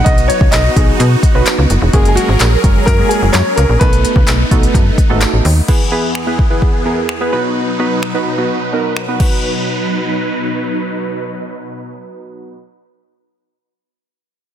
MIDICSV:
0, 0, Header, 1, 6, 480
1, 0, Start_track
1, 0, Key_signature, 5, "major"
1, 0, Tempo, 468750
1, 61, Time_signature, 4, 2, 24, 8
1, 14890, End_track
2, 0, Start_track
2, 0, Title_t, "Grand piano"
2, 0, Program_c, 0, 0
2, 46, Note_on_c, 0, 75, 101
2, 276, Note_off_c, 0, 75, 0
2, 285, Note_on_c, 0, 73, 89
2, 516, Note_off_c, 0, 73, 0
2, 526, Note_on_c, 0, 75, 88
2, 1693, Note_off_c, 0, 75, 0
2, 2135, Note_on_c, 0, 68, 72
2, 2206, Note_on_c, 0, 66, 92
2, 2214, Note_off_c, 0, 68, 0
2, 2926, Note_on_c, 0, 70, 110
2, 2955, Note_off_c, 0, 66, 0
2, 3165, Note_on_c, 0, 68, 99
2, 3181, Note_off_c, 0, 70, 0
2, 3406, Note_on_c, 0, 73, 115
2, 3420, Note_off_c, 0, 68, 0
2, 3646, Note_on_c, 0, 70, 106
2, 3661, Note_off_c, 0, 73, 0
2, 3886, Note_on_c, 0, 71, 99
2, 3901, Note_off_c, 0, 70, 0
2, 5293, Note_off_c, 0, 71, 0
2, 14890, End_track
3, 0, Start_track
3, 0, Title_t, "Synth keys"
3, 0, Program_c, 1, 88
3, 0, Note_on_c, 1, 54, 80
3, 0, Note_on_c, 1, 59, 72
3, 0, Note_on_c, 1, 63, 76
3, 0, Note_on_c, 1, 66, 77
3, 0, Note_on_c, 1, 71, 84
3, 588, Note_off_c, 1, 54, 0
3, 588, Note_off_c, 1, 59, 0
3, 590, Note_off_c, 1, 63, 0
3, 590, Note_off_c, 1, 66, 0
3, 591, Note_off_c, 1, 71, 0
3, 779, Note_on_c, 1, 54, 82
3, 780, Note_on_c, 1, 59, 73
3, 782, Note_on_c, 1, 63, 74
3, 782, Note_on_c, 1, 66, 70
3, 784, Note_on_c, 1, 68, 85
3, 1121, Note_off_c, 1, 54, 0
3, 1122, Note_off_c, 1, 59, 0
3, 1123, Note_off_c, 1, 63, 0
3, 1123, Note_off_c, 1, 66, 0
3, 1124, Note_off_c, 1, 68, 0
3, 1378, Note_on_c, 1, 54, 89
3, 1380, Note_on_c, 1, 59, 85
3, 1381, Note_on_c, 1, 63, 86
3, 1382, Note_on_c, 1, 66, 87
3, 1383, Note_on_c, 1, 71, 101
3, 1721, Note_off_c, 1, 54, 0
3, 1721, Note_off_c, 1, 59, 0
3, 1722, Note_off_c, 1, 63, 0
3, 1723, Note_off_c, 1, 66, 0
3, 1723, Note_off_c, 1, 71, 0
3, 1979, Note_on_c, 1, 56, 97
3, 1980, Note_on_c, 1, 58, 91
3, 1982, Note_on_c, 1, 61, 87
3, 1983, Note_on_c, 1, 66, 88
3, 1984, Note_on_c, 1, 68, 108
3, 2390, Note_off_c, 1, 56, 0
3, 2390, Note_off_c, 1, 58, 0
3, 2391, Note_off_c, 1, 61, 0
3, 2391, Note_off_c, 1, 66, 0
3, 2392, Note_off_c, 1, 68, 0
3, 2699, Note_on_c, 1, 56, 80
3, 2700, Note_on_c, 1, 58, 71
3, 2701, Note_on_c, 1, 61, 73
3, 2703, Note_on_c, 1, 66, 76
3, 2704, Note_on_c, 1, 70, 92
3, 2904, Note_off_c, 1, 56, 0
3, 2905, Note_off_c, 1, 58, 0
3, 2906, Note_off_c, 1, 61, 0
3, 2907, Note_off_c, 1, 66, 0
3, 2907, Note_off_c, 1, 70, 0
3, 3060, Note_on_c, 1, 56, 78
3, 3061, Note_on_c, 1, 58, 71
3, 3062, Note_on_c, 1, 61, 72
3, 3063, Note_on_c, 1, 66, 72
3, 3064, Note_on_c, 1, 68, 89
3, 3538, Note_off_c, 1, 56, 0
3, 3538, Note_off_c, 1, 58, 0
3, 3539, Note_off_c, 1, 61, 0
3, 3540, Note_off_c, 1, 66, 0
3, 3540, Note_off_c, 1, 68, 0
3, 3899, Note_on_c, 1, 57, 84
3, 3900, Note_on_c, 1, 59, 74
3, 3901, Note_on_c, 1, 63, 73
3, 3902, Note_on_c, 1, 66, 74
3, 3904, Note_on_c, 1, 69, 90
3, 4309, Note_off_c, 1, 57, 0
3, 4310, Note_off_c, 1, 59, 0
3, 4310, Note_off_c, 1, 63, 0
3, 4311, Note_off_c, 1, 66, 0
3, 4312, Note_off_c, 1, 69, 0
3, 4618, Note_on_c, 1, 57, 92
3, 4619, Note_on_c, 1, 59, 86
3, 4621, Note_on_c, 1, 63, 85
3, 4622, Note_on_c, 1, 66, 87
3, 4623, Note_on_c, 1, 69, 100
3, 4961, Note_off_c, 1, 57, 0
3, 4961, Note_off_c, 1, 59, 0
3, 4962, Note_off_c, 1, 63, 0
3, 4963, Note_off_c, 1, 66, 0
3, 4963, Note_off_c, 1, 69, 0
3, 5218, Note_on_c, 1, 57, 91
3, 5219, Note_on_c, 1, 59, 84
3, 5220, Note_on_c, 1, 63, 81
3, 5222, Note_on_c, 1, 66, 83
3, 5223, Note_on_c, 1, 69, 105
3, 5561, Note_off_c, 1, 57, 0
3, 5561, Note_off_c, 1, 59, 0
3, 5562, Note_off_c, 1, 63, 0
3, 5562, Note_off_c, 1, 66, 0
3, 5563, Note_off_c, 1, 69, 0
3, 5818, Note_on_c, 1, 59, 88
3, 5820, Note_on_c, 1, 64, 82
3, 5822, Note_on_c, 1, 68, 82
3, 5823, Note_on_c, 1, 71, 99
3, 5956, Note_off_c, 1, 59, 0
3, 5957, Note_off_c, 1, 64, 0
3, 5958, Note_off_c, 1, 68, 0
3, 5959, Note_off_c, 1, 71, 0
3, 6058, Note_on_c, 1, 59, 90
3, 6060, Note_on_c, 1, 64, 85
3, 6061, Note_on_c, 1, 68, 84
3, 6063, Note_on_c, 1, 71, 98
3, 6264, Note_off_c, 1, 59, 0
3, 6265, Note_off_c, 1, 64, 0
3, 6266, Note_off_c, 1, 68, 0
3, 6267, Note_off_c, 1, 71, 0
3, 6418, Note_on_c, 1, 59, 87
3, 6420, Note_on_c, 1, 64, 77
3, 6421, Note_on_c, 1, 68, 79
3, 6423, Note_on_c, 1, 71, 94
3, 6556, Note_off_c, 1, 59, 0
3, 6557, Note_off_c, 1, 64, 0
3, 6558, Note_off_c, 1, 68, 0
3, 6558, Note_off_c, 1, 71, 0
3, 6658, Note_on_c, 1, 59, 87
3, 6660, Note_on_c, 1, 64, 82
3, 6661, Note_on_c, 1, 68, 79
3, 6664, Note_on_c, 1, 71, 93
3, 6864, Note_off_c, 1, 59, 0
3, 6865, Note_off_c, 1, 64, 0
3, 6866, Note_off_c, 1, 68, 0
3, 6867, Note_off_c, 1, 71, 0
3, 7018, Note_on_c, 1, 59, 82
3, 7020, Note_on_c, 1, 64, 77
3, 7021, Note_on_c, 1, 68, 77
3, 7023, Note_on_c, 1, 70, 86
3, 7224, Note_off_c, 1, 59, 0
3, 7225, Note_off_c, 1, 64, 0
3, 7226, Note_off_c, 1, 68, 0
3, 7227, Note_off_c, 1, 70, 0
3, 7379, Note_on_c, 1, 59, 88
3, 7380, Note_on_c, 1, 64, 76
3, 7382, Note_on_c, 1, 68, 78
3, 7384, Note_on_c, 1, 71, 92
3, 7487, Note_off_c, 1, 59, 0
3, 7492, Note_off_c, 1, 71, 0
3, 7499, Note_on_c, 1, 59, 92
3, 7501, Note_off_c, 1, 64, 0
3, 7501, Note_on_c, 1, 63, 81
3, 7502, Note_off_c, 1, 68, 0
3, 7502, Note_on_c, 1, 66, 79
3, 7504, Note_on_c, 1, 71, 98
3, 7884, Note_off_c, 1, 59, 0
3, 7885, Note_off_c, 1, 63, 0
3, 7886, Note_off_c, 1, 66, 0
3, 7887, Note_off_c, 1, 71, 0
3, 7979, Note_on_c, 1, 59, 91
3, 7981, Note_on_c, 1, 63, 81
3, 7983, Note_on_c, 1, 66, 84
3, 7984, Note_on_c, 1, 71, 97
3, 8185, Note_off_c, 1, 59, 0
3, 8186, Note_off_c, 1, 63, 0
3, 8186, Note_off_c, 1, 66, 0
3, 8187, Note_off_c, 1, 71, 0
3, 8339, Note_on_c, 1, 59, 89
3, 8341, Note_on_c, 1, 63, 78
3, 8342, Note_on_c, 1, 66, 75
3, 8344, Note_on_c, 1, 71, 91
3, 8476, Note_off_c, 1, 59, 0
3, 8477, Note_off_c, 1, 63, 0
3, 8478, Note_off_c, 1, 66, 0
3, 8479, Note_off_c, 1, 71, 0
3, 8579, Note_on_c, 1, 59, 84
3, 8581, Note_on_c, 1, 63, 78
3, 8582, Note_on_c, 1, 66, 77
3, 8584, Note_on_c, 1, 71, 88
3, 8785, Note_off_c, 1, 59, 0
3, 8786, Note_off_c, 1, 63, 0
3, 8786, Note_off_c, 1, 66, 0
3, 8787, Note_off_c, 1, 71, 0
3, 8938, Note_on_c, 1, 59, 79
3, 8940, Note_on_c, 1, 63, 69
3, 8942, Note_on_c, 1, 66, 71
3, 8944, Note_on_c, 1, 70, 89
3, 9144, Note_off_c, 1, 59, 0
3, 9145, Note_off_c, 1, 63, 0
3, 9146, Note_off_c, 1, 66, 0
3, 9147, Note_off_c, 1, 70, 0
3, 9298, Note_on_c, 1, 59, 82
3, 9300, Note_on_c, 1, 63, 73
3, 9302, Note_on_c, 1, 66, 75
3, 9303, Note_on_c, 1, 71, 90
3, 9388, Note_off_c, 1, 59, 0
3, 9400, Note_on_c, 1, 59, 71
3, 9402, Note_off_c, 1, 63, 0
3, 9414, Note_on_c, 1, 63, 66
3, 9415, Note_off_c, 1, 66, 0
3, 9422, Note_off_c, 1, 71, 0
3, 9428, Note_on_c, 1, 66, 69
3, 9441, Note_on_c, 1, 71, 83
3, 12839, Note_off_c, 1, 59, 0
3, 12853, Note_off_c, 1, 63, 0
3, 12866, Note_off_c, 1, 66, 0
3, 12879, Note_off_c, 1, 71, 0
3, 14890, End_track
4, 0, Start_track
4, 0, Title_t, "Supersaw synth"
4, 0, Program_c, 2, 81
4, 0, Note_on_c, 2, 59, 82
4, 0, Note_on_c, 2, 63, 77
4, 0, Note_on_c, 2, 66, 94
4, 1960, Note_off_c, 2, 59, 0
4, 1960, Note_off_c, 2, 63, 0
4, 1960, Note_off_c, 2, 66, 0
4, 1982, Note_on_c, 2, 54, 83
4, 1982, Note_on_c, 2, 61, 75
4, 1982, Note_on_c, 2, 68, 76
4, 1982, Note_on_c, 2, 70, 90
4, 3882, Note_off_c, 2, 54, 0
4, 3882, Note_off_c, 2, 61, 0
4, 3882, Note_off_c, 2, 68, 0
4, 3882, Note_off_c, 2, 70, 0
4, 3902, Note_on_c, 2, 57, 83
4, 3902, Note_on_c, 2, 59, 76
4, 5802, Note_off_c, 2, 59, 0
4, 5803, Note_off_c, 2, 57, 0
4, 5822, Note_on_c, 2, 40, 75
4, 5822, Note_on_c, 2, 68, 87
4, 5823, Note_on_c, 2, 52, 73
4, 5823, Note_on_c, 2, 59, 72
4, 7485, Note_off_c, 2, 40, 0
4, 7485, Note_off_c, 2, 52, 0
4, 7485, Note_off_c, 2, 59, 0
4, 7485, Note_off_c, 2, 68, 0
4, 7501, Note_on_c, 2, 47, 79
4, 7501, Note_on_c, 2, 54, 73
4, 7501, Note_on_c, 2, 63, 74
4, 7501, Note_on_c, 2, 71, 88
4, 9402, Note_off_c, 2, 47, 0
4, 9402, Note_off_c, 2, 54, 0
4, 9402, Note_off_c, 2, 63, 0
4, 9402, Note_off_c, 2, 71, 0
4, 9420, Note_on_c, 2, 47, 73
4, 9421, Note_on_c, 2, 54, 73
4, 9421, Note_on_c, 2, 63, 70
4, 9421, Note_on_c, 2, 71, 83
4, 12859, Note_off_c, 2, 47, 0
4, 12859, Note_off_c, 2, 54, 0
4, 12859, Note_off_c, 2, 63, 0
4, 12859, Note_off_c, 2, 71, 0
4, 14890, End_track
5, 0, Start_track
5, 0, Title_t, "FM bass"
5, 0, Program_c, 3, 39
5, 62, Note_on_c, 3, 35, 104
5, 311, Note_off_c, 3, 35, 0
5, 419, Note_on_c, 3, 37, 86
5, 503, Note_off_c, 3, 37, 0
5, 541, Note_on_c, 3, 35, 98
5, 707, Note_off_c, 3, 35, 0
5, 782, Note_on_c, 3, 35, 93
5, 948, Note_off_c, 3, 35, 0
5, 1021, Note_on_c, 3, 47, 106
5, 1188, Note_off_c, 3, 47, 0
5, 1381, Note_on_c, 3, 35, 91
5, 1465, Note_off_c, 3, 35, 0
5, 1621, Note_on_c, 3, 37, 94
5, 1704, Note_off_c, 3, 37, 0
5, 1742, Note_on_c, 3, 30, 90
5, 1825, Note_off_c, 3, 30, 0
5, 1861, Note_on_c, 3, 28, 97
5, 1944, Note_off_c, 3, 28, 0
5, 1982, Note_on_c, 3, 30, 115
5, 2231, Note_off_c, 3, 30, 0
5, 2341, Note_on_c, 3, 32, 97
5, 2424, Note_off_c, 3, 32, 0
5, 2461, Note_on_c, 3, 34, 93
5, 2627, Note_off_c, 3, 34, 0
5, 2702, Note_on_c, 3, 30, 96
5, 2868, Note_off_c, 3, 30, 0
5, 2939, Note_on_c, 3, 42, 102
5, 3107, Note_off_c, 3, 42, 0
5, 3301, Note_on_c, 3, 30, 92
5, 3385, Note_off_c, 3, 30, 0
5, 3421, Note_on_c, 3, 42, 117
5, 3504, Note_off_c, 3, 42, 0
5, 3661, Note_on_c, 3, 37, 98
5, 3744, Note_off_c, 3, 37, 0
5, 3781, Note_on_c, 3, 34, 90
5, 3864, Note_off_c, 3, 34, 0
5, 3901, Note_on_c, 3, 35, 112
5, 4151, Note_off_c, 3, 35, 0
5, 4258, Note_on_c, 3, 37, 99
5, 4342, Note_off_c, 3, 37, 0
5, 4381, Note_on_c, 3, 35, 102
5, 4547, Note_off_c, 3, 35, 0
5, 4621, Note_on_c, 3, 35, 94
5, 4788, Note_off_c, 3, 35, 0
5, 4858, Note_on_c, 3, 42, 96
5, 5026, Note_off_c, 3, 42, 0
5, 5098, Note_on_c, 3, 32, 49
5, 5147, Note_off_c, 3, 32, 0
5, 5221, Note_on_c, 3, 32, 91
5, 5388, Note_off_c, 3, 32, 0
5, 5461, Note_on_c, 3, 33, 82
5, 5544, Note_off_c, 3, 33, 0
5, 5580, Note_on_c, 3, 39, 93
5, 5747, Note_off_c, 3, 39, 0
5, 14890, End_track
6, 0, Start_track
6, 0, Title_t, "Drums"
6, 61, Note_on_c, 9, 42, 90
6, 62, Note_on_c, 9, 36, 118
6, 164, Note_off_c, 9, 36, 0
6, 164, Note_off_c, 9, 42, 0
6, 183, Note_on_c, 9, 42, 56
6, 286, Note_off_c, 9, 42, 0
6, 304, Note_on_c, 9, 42, 86
6, 406, Note_off_c, 9, 42, 0
6, 419, Note_on_c, 9, 36, 104
6, 521, Note_off_c, 9, 36, 0
6, 540, Note_on_c, 9, 39, 123
6, 540, Note_on_c, 9, 42, 106
6, 541, Note_off_c, 9, 39, 0
6, 541, Note_on_c, 9, 39, 91
6, 549, Note_on_c, 9, 38, 101
6, 642, Note_off_c, 9, 42, 0
6, 644, Note_off_c, 9, 39, 0
6, 651, Note_off_c, 9, 38, 0
6, 782, Note_on_c, 9, 36, 100
6, 783, Note_on_c, 9, 42, 81
6, 885, Note_off_c, 9, 36, 0
6, 886, Note_off_c, 9, 42, 0
6, 1025, Note_on_c, 9, 42, 89
6, 1127, Note_off_c, 9, 42, 0
6, 1259, Note_on_c, 9, 36, 102
6, 1263, Note_on_c, 9, 42, 79
6, 1361, Note_off_c, 9, 36, 0
6, 1365, Note_off_c, 9, 42, 0
6, 1500, Note_on_c, 9, 42, 109
6, 1501, Note_on_c, 9, 39, 122
6, 1502, Note_off_c, 9, 39, 0
6, 1502, Note_on_c, 9, 39, 102
6, 1510, Note_on_c, 9, 38, 99
6, 1602, Note_off_c, 9, 42, 0
6, 1604, Note_off_c, 9, 39, 0
6, 1613, Note_off_c, 9, 38, 0
6, 1741, Note_on_c, 9, 42, 79
6, 1843, Note_off_c, 9, 42, 0
6, 1981, Note_on_c, 9, 42, 86
6, 1982, Note_on_c, 9, 36, 122
6, 2083, Note_off_c, 9, 42, 0
6, 2084, Note_off_c, 9, 36, 0
6, 2103, Note_on_c, 9, 42, 57
6, 2205, Note_off_c, 9, 42, 0
6, 2224, Note_on_c, 9, 42, 87
6, 2326, Note_off_c, 9, 42, 0
6, 2460, Note_on_c, 9, 39, 127
6, 2460, Note_on_c, 9, 42, 106
6, 2461, Note_off_c, 9, 39, 0
6, 2461, Note_on_c, 9, 39, 88
6, 2469, Note_on_c, 9, 38, 104
6, 2563, Note_off_c, 9, 42, 0
6, 2564, Note_off_c, 9, 39, 0
6, 2572, Note_off_c, 9, 38, 0
6, 2702, Note_on_c, 9, 36, 103
6, 2703, Note_on_c, 9, 42, 80
6, 2804, Note_off_c, 9, 36, 0
6, 2806, Note_off_c, 9, 42, 0
6, 2939, Note_on_c, 9, 36, 102
6, 2944, Note_on_c, 9, 42, 91
6, 3042, Note_off_c, 9, 36, 0
6, 3047, Note_off_c, 9, 42, 0
6, 3183, Note_on_c, 9, 42, 77
6, 3285, Note_off_c, 9, 42, 0
6, 3419, Note_on_c, 9, 42, 109
6, 3420, Note_on_c, 9, 39, 123
6, 3422, Note_off_c, 9, 39, 0
6, 3422, Note_on_c, 9, 39, 105
6, 3430, Note_on_c, 9, 38, 100
6, 3522, Note_off_c, 9, 42, 0
6, 3524, Note_off_c, 9, 39, 0
6, 3532, Note_off_c, 9, 38, 0
6, 3661, Note_on_c, 9, 42, 80
6, 3763, Note_off_c, 9, 42, 0
6, 3901, Note_on_c, 9, 36, 118
6, 3901, Note_on_c, 9, 42, 88
6, 4003, Note_off_c, 9, 36, 0
6, 4003, Note_off_c, 9, 42, 0
6, 4022, Note_on_c, 9, 42, 59
6, 4125, Note_off_c, 9, 42, 0
6, 4143, Note_on_c, 9, 42, 90
6, 4246, Note_off_c, 9, 42, 0
6, 4258, Note_on_c, 9, 36, 107
6, 4360, Note_off_c, 9, 36, 0
6, 4379, Note_on_c, 9, 39, 126
6, 4379, Note_on_c, 9, 42, 106
6, 4381, Note_off_c, 9, 39, 0
6, 4381, Note_on_c, 9, 39, 91
6, 4388, Note_on_c, 9, 38, 103
6, 4481, Note_off_c, 9, 42, 0
6, 4483, Note_off_c, 9, 39, 0
6, 4491, Note_off_c, 9, 38, 0
6, 4621, Note_on_c, 9, 36, 97
6, 4622, Note_on_c, 9, 42, 80
6, 4724, Note_off_c, 9, 36, 0
6, 4724, Note_off_c, 9, 42, 0
6, 4744, Note_on_c, 9, 42, 58
6, 4846, Note_off_c, 9, 42, 0
6, 4859, Note_on_c, 9, 36, 106
6, 4864, Note_on_c, 9, 42, 87
6, 4961, Note_off_c, 9, 36, 0
6, 4966, Note_off_c, 9, 42, 0
6, 5098, Note_on_c, 9, 36, 100
6, 5103, Note_on_c, 9, 42, 74
6, 5201, Note_off_c, 9, 36, 0
6, 5205, Note_off_c, 9, 42, 0
6, 5339, Note_on_c, 9, 42, 108
6, 5340, Note_on_c, 9, 39, 127
6, 5341, Note_off_c, 9, 39, 0
6, 5341, Note_on_c, 9, 39, 109
6, 5350, Note_on_c, 9, 38, 97
6, 5442, Note_off_c, 9, 42, 0
6, 5444, Note_off_c, 9, 39, 0
6, 5452, Note_off_c, 9, 38, 0
6, 5581, Note_on_c, 9, 46, 82
6, 5683, Note_off_c, 9, 46, 0
6, 5821, Note_on_c, 9, 36, 111
6, 5821, Note_on_c, 9, 49, 82
6, 5923, Note_off_c, 9, 49, 0
6, 5924, Note_off_c, 9, 36, 0
6, 6299, Note_on_c, 9, 26, 117
6, 6402, Note_off_c, 9, 26, 0
6, 6542, Note_on_c, 9, 36, 89
6, 6644, Note_off_c, 9, 36, 0
6, 6779, Note_on_c, 9, 36, 93
6, 6881, Note_off_c, 9, 36, 0
6, 7261, Note_on_c, 9, 26, 109
6, 7363, Note_off_c, 9, 26, 0
6, 8220, Note_on_c, 9, 26, 112
6, 8322, Note_off_c, 9, 26, 0
6, 9180, Note_on_c, 9, 26, 111
6, 9283, Note_off_c, 9, 26, 0
6, 9421, Note_on_c, 9, 36, 93
6, 9421, Note_on_c, 9, 49, 76
6, 9523, Note_off_c, 9, 36, 0
6, 9523, Note_off_c, 9, 49, 0
6, 14890, End_track
0, 0, End_of_file